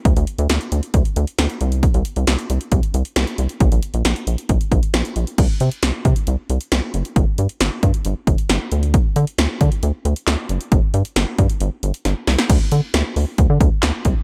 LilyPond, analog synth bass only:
\new Staff \with { instrumentName = "Analog synth bass" } { \clef bass \time 4/4 \key d \mixolydian \tempo 4 = 135 d,16 d,16 r16 d,16 d,16 r16 d,16 r16 d,16 r16 d,16 r16 d,16 r16 c,8~ | c,16 c,16 r16 c,16 c,16 r16 c,16 r16 c,16 r16 c,16 r16 c,16 r16 c,16 r16 | bes,,16 bes,,16 r16 bes,,16 bes,,16 r16 bes,,16 r16 bes,,16 r16 bes,,16 r16 bes,,16 r16 bes,,16 r16 | c,16 r16 c16 r16 c,16 r16 c16 r16 c,16 r16 c,16 r16 c,16 r16 fis,,16 r16 |
g,,16 r16 g,16 r16 g,,16 r16 g,16 r16 g,,16 r16 g,,16 r16 g,,16 r16 d,8~ | d,16 r16 d16 r16 d,16 r16 d16 r16 d,16 r16 d,16 r16 d,16 r16 fis,,16 r16 | g,,16 r16 g,16 r16 g,,16 r16 g,16 r16 g,,16 r16 g,,16 r16 g,,16 r16 c,16 r16 | d,16 r16 d16 r16 d,16 r16 d,16 r16 d,16 d16 d,16 r16 d,16 r16 c,16 r16 | }